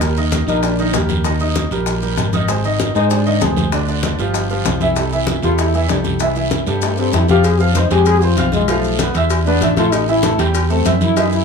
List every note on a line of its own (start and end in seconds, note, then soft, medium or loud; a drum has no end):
0.00 0.42 D#2 medium
0.00 0.14 G3 medium
0.00 0.14 G4 medium
0.00 0.14 A#4 medium
0.00 high bongo medium
0.00 high conga soft
0.00 long guiro medium
0.00 maracas medium
0.17 0.42 D#3 medium
0.17 0.42 D#4 medium
0.17 0.43 D#5 medium
0.17 high conga soft
0.17 maracas soft
0.32 high bongo medium
0.32 high conga loud
0.32 short guiro medium
0.32 maracas medium
0.47 0.90 A#1 loud
0.47 0.73 G3 medium
0.47 0.64 D#4 loud
0.47 0.74 G4 medium
0.47 0.74 A#4 medium
0.47 high conga soft
0.47 short guiro medium
0.47 maracas soft
0.63 0.95 D4 medium
0.63 high bongo medium
0.63 high conga soft
0.63 long guiro medium
0.63 maracas medium
0.78 0.91 D#3 medium
0.78 0.92 D#4 medium
0.78 0.92 D#5 medium
0.78 high conga soft
0.78 maracas soft
0.93 1.65 D#2 medium
0.93 1.20 G3 medium
0.93 1.09 A#3 medium
0.93 1.20 G4 medium
0.93 1.20 A#4 medium
0.93 high bongo medium
0.93 low bongo medium
0.93 high conga medium
0.93 short guiro medium
0.93 maracas medium
1.09 high conga medium
1.09 short guiro medium
1.09 maracas soft
1.24 1.38 D#3 medium
1.24 1.38 D#4 medium
1.24 1.38 D#5 medium
1.24 high bongo medium
1.24 high conga soft
1.24 long guiro medium
1.24 maracas medium
1.40 1.66 D#3 medium
1.40 1.66 D#4 medium
1.40 1.66 D#5 medium
1.40 high bongo soft
1.40 high conga soft
1.40 maracas soft
1.55 high bongo medium
1.55 high conga medium
1.55 short guiro medium
1.55 maracas medium
1.71 2.14 A#1 medium
1.71 1.97 G3 medium
1.71 1.97 G4 medium
1.71 1.97 A#4 medium
1.71 high bongo soft
1.71 high conga soft
1.71 short guiro medium
1.71 maracas soft
1.86 high bongo medium
1.86 high conga soft
1.86 long guiro medium
1.86 maracas medium
2.02 2.28 G3 medium
2.02 2.28 G4 medium
2.02 2.28 A#4 medium
2.02 high bongo soft
2.02 high conga soft
2.02 maracas soft
2.17 2.89 G#1 medium
2.17 high bongo medium
2.17 low bongo medium
2.17 high conga medium
2.17 short guiro medium
2.17 maracas medium
2.33 2.46 D#3 medium
2.33 2.46 D#4 medium
2.33 2.46 D#5 medium
2.33 high conga medium
2.33 short guiro medium
2.33 maracas soft
2.48 2.62 G#3 medium
2.48 2.62 G#4 medium
2.48 2.62 C5 medium
2.48 high bongo medium
2.48 long guiro medium
2.48 maracas medium
2.64 2.90 D#3 medium
2.64 2.90 D#4 medium
2.64 2.90 D#5 medium
2.64 high conga soft
2.64 maracas soft
2.80 high bongo medium
2.80 high conga loud
2.80 short guiro medium
2.80 maracas medium
2.95 3.38 G#2 loud
2.95 3.21 G#3 medium
2.95 3.12 D#4 loud
2.95 3.21 G#4 medium
2.95 3.21 C5 medium
2.95 high conga soft
2.95 short guiro medium
2.95 maracas soft
3.10 3.43 D4 medium
3.10 high bongo medium
3.10 high conga soft
3.10 long guiro medium
3.10 maracas medium
3.26 3.39 D#3 medium
3.26 3.39 D#4 medium
3.26 3.39 D#5 medium
3.26 high conga soft
3.26 maracas soft
3.41 4.13 D2 medium
3.41 3.67 G#3 medium
3.41 3.57 C4 medium
3.41 3.67 G#4 medium
3.41 3.68 C5 medium
3.41 high bongo medium
3.41 low bongo medium
3.41 high conga medium
3.41 short guiro medium
3.41 maracas medium
3.56 high conga medium
3.56 short guiro medium
3.56 maracas soft
3.72 3.85 D3 medium
3.72 3.86 D4 medium
3.72 3.86 D5 medium
3.72 high bongo medium
3.72 high conga soft
3.72 long guiro medium
3.72 maracas medium
3.88 4.13 D3 medium
3.88 4.14 D4 medium
3.88 4.14 D5 medium
3.88 high bongo soft
3.88 high conga soft
3.88 maracas soft
4.03 high bongo medium
4.03 high conga loud
4.03 short guiro medium
4.03 maracas medium
4.19 4.62 G1 loud
4.19 4.45 F3 medium
4.19 4.45 F4 medium
4.19 4.45 G4 medium
4.19 high bongo soft
4.19 high conga soft
4.19 short guiro medium
4.19 maracas soft
4.34 high bongo medium
4.34 high conga soft
4.34 long guiro medium
4.34 maracas medium
4.50 4.76 F3 medium
4.50 4.76 F4 medium
4.50 4.76 G4 medium
4.50 high bongo soft
4.50 high conga soft
4.50 maracas soft
4.65 5.37 C2 medium
4.65 high bongo medium
4.65 low bongo medium
4.65 high conga medium
4.65 short guiro medium
4.65 maracas medium
4.80 4.94 E3 medium
4.80 4.94 E4 medium
4.80 4.94 E5 medium
4.80 high conga medium
4.80 short guiro medium
4.80 maracas soft
4.96 5.10 G3 medium
4.96 5.10 G4 medium
4.96 5.10 A4 medium
4.96 high bongo medium
4.96 high conga soft
4.96 long guiro medium
4.96 maracas medium
5.12 5.38 E3 medium
5.12 5.38 E4 medium
5.12 5.38 E5 medium
5.12 high conga soft
5.12 maracas soft
5.27 high bongo medium
5.27 high conga loud
5.27 short guiro medium
5.27 maracas medium
5.42 5.86 E2 loud
5.42 5.69 G3 medium
5.42 5.60 F4 loud
5.42 5.69 G4 medium
5.42 5.69 A4 medium
5.42 high conga soft
5.42 short guiro medium
5.42 maracas soft
5.58 5.88 E4 medium
5.58 high bongo medium
5.58 high conga soft
5.58 long guiro medium
5.58 maracas medium
5.73 5.87 E3 loud
5.73 5.87 E4 medium
5.73 5.88 E5 medium
5.73 high conga soft
5.73 maracas soft
5.88 6.61 C2 medium
5.88 6.15 G3 medium
5.88 5.98 D4 medium
5.88 6.16 G4 medium
5.88 6.16 A4 medium
5.88 high bongo medium
5.88 low bongo medium
5.88 high conga medium
5.88 short guiro medium
5.88 maracas medium
6.04 high conga medium
6.04 short guiro medium
6.04 maracas soft
6.20 6.34 E3 medium
6.20 6.34 E4 medium
6.20 6.34 E5 medium
6.20 high bongo medium
6.20 high conga soft
6.20 long guiro medium
6.20 maracas medium
6.36 6.62 E3 medium
6.36 6.62 E4 medium
6.36 6.62 E5 medium
6.36 high bongo soft
6.36 high conga soft
6.36 maracas soft
6.51 high bongo medium
6.51 high conga loud
6.51 short guiro medium
6.51 maracas medium
6.66 7.10 G2 loud
6.66 6.93 G3 medium
6.66 6.93 G4 medium
6.66 6.93 A4 medium
6.66 high bongo soft
6.66 high conga soft
6.66 short guiro medium
6.66 maracas soft
6.82 6.98 A3 medium
6.82 high bongo medium
6.82 high conga soft
6.82 long guiro medium
6.82 maracas medium
6.97 7.24 G3 medium
6.97 7.15 C4 loud
6.97 7.24 G4 medium
6.97 7.24 A4 medium
6.97 high bongo soft
6.97 high conga soft
6.97 maracas soft
7.13 7.85 F2 medium
7.13 7.28 E4 medium
7.13 high bongo medium
7.13 low bongo medium
7.13 high conga medium
7.13 short guiro medium
7.13 maracas medium
7.28 7.42 F3 medium
7.28 7.42 F4 medium
7.28 7.45 G4 loud
7.28 7.42 F5 medium
7.28 high conga medium
7.28 short guiro medium
7.28 maracas soft
7.43 7.61 G#4 loud
7.43 cowbell loud
7.43 high conga soft
7.43 long guiro medium
7.43 maracas medium
7.60 7.73 F3 medium
7.60 7.77 C4 medium
7.60 7.73 F4 medium
7.60 7.73 F5 medium
7.60 high conga soft
7.60 maracas soft
7.75 7.89 C4 medium
7.75 7.91 D#4 medium
7.75 7.89 C5 medium
7.75 7.89 C6 medium
7.75 cowbell medium
7.75 high conga medium
7.75 short guiro medium
7.75 maracas medium
7.90 8.34 F2 medium
7.90 8.17 G#3 medium
7.90 8.08 G4 loud
7.90 8.17 G#4 medium
7.90 8.17 G#5 medium
7.90 cowbell medium
7.90 high conga soft
7.90 short guiro medium
7.90 maracas soft
8.06 8.23 G#4 loud
8.06 cowbell loud
8.06 high conga soft
8.06 long guiro medium
8.06 maracas medium
8.22 8.35 C4 medium
8.22 8.39 F4 loud
8.22 8.35 C5 medium
8.22 8.36 C6 medium
8.22 high conga soft
8.22 maracas soft
8.37 9.09 B1 medium
8.37 8.53 C4 medium
8.37 8.64 F4 medium
8.37 8.64 F5 medium
8.37 8.64 F6 medium
8.37 cowbell medium
8.37 high conga medium
8.37 short guiro medium
8.37 maracas medium
8.52 8.70 G#3 medium
8.52 high conga medium
8.52 short guiro medium
8.52 maracas soft
8.68 8.94 F3 medium
8.68 9.15 A3 medium
8.68 8.95 F4 medium
8.68 8.95 F5 medium
8.68 cowbell loud
8.68 high conga soft
8.68 long guiro medium
8.68 maracas medium
8.84 high conga soft
8.84 maracas soft
8.99 9.13 B3 medium
8.99 9.13 B4 medium
8.99 9.13 B5 medium
8.99 cowbell medium
8.99 high conga loud
8.99 short guiro medium
8.99 maracas medium
9.14 9.58 E2 loud
9.14 9.41 E4 medium
9.14 9.41 E5 medium
9.14 9.42 E6 medium
9.14 cowbell medium
9.14 high conga soft
9.14 short guiro medium
9.14 maracas soft
9.30 cowbell loud
9.30 high conga soft
9.30 long guiro medium
9.30 maracas medium
9.45 9.59 B3 medium
9.45 9.75 D4 loud
9.45 9.60 B4 medium
9.45 9.60 B5 medium
9.45 high conga soft
9.45 maracas soft
9.61 10.33 A1 medium
9.61 9.75 E4 medium
9.61 9.75 E5 medium
9.61 9.75 E6 medium
9.61 cowbell medium
9.61 high conga medium
9.61 short guiro medium
9.61 maracas medium
9.77 10.03 A3 medium
9.77 9.94 F4 loud
9.77 10.03 A4 medium
9.77 10.03 A5 medium
9.77 cowbell medium
9.77 high conga medium
9.77 short guiro medium
9.77 maracas soft
9.92 10.09 D#4 loud
9.92 cowbell loud
9.92 high conga soft
9.92 long guiro medium
9.92 maracas medium
10.08 10.21 E3 medium
10.08 10.39 E4 loud
10.08 10.21 E4 medium
10.08 10.22 E5 medium
10.08 high conga soft
10.08 maracas soft
10.23 10.36 A3 medium
10.23 10.36 A4 medium
10.23 10.37 A5 medium
10.23 cowbell medium
10.23 high conga loud
10.23 short guiro medium
10.23 maracas medium
10.38 10.82 E2 loud
10.38 10.64 G3 medium
10.38 10.65 G4 medium
10.38 10.65 G5 medium
10.38 cowbell medium
10.38 high conga soft
10.38 short guiro medium
10.38 maracas soft
10.54 cowbell loud
10.54 high conga soft
10.54 long guiro medium
10.54 maracas medium
10.70 10.83 A3 medium
10.70 11.02 C4 medium
10.70 10.83 A4 medium
10.70 10.83 A5 medium
10.70 high conga soft
10.70 maracas soft
10.85 11.45 F#2 medium
10.85 11.11 E4 medium
10.85 11.11 E5 medium
10.85 11.11 E6 medium
10.85 cowbell medium
10.85 high conga medium
10.85 short guiro medium
10.85 maracas medium
11.01 11.18 E4 loud
11.01 high conga medium
11.01 short guiro medium
11.01 maracas soft
11.16 11.42 E3 medium
11.16 11.32 D#4 loud
11.16 11.42 E4 medium
11.16 11.43 E5 medium
11.16 cowbell loud
11.16 high conga soft
11.16 long guiro medium
11.16 maracas medium
11.32 11.45 E4 medium
11.32 high conga soft
11.32 maracas soft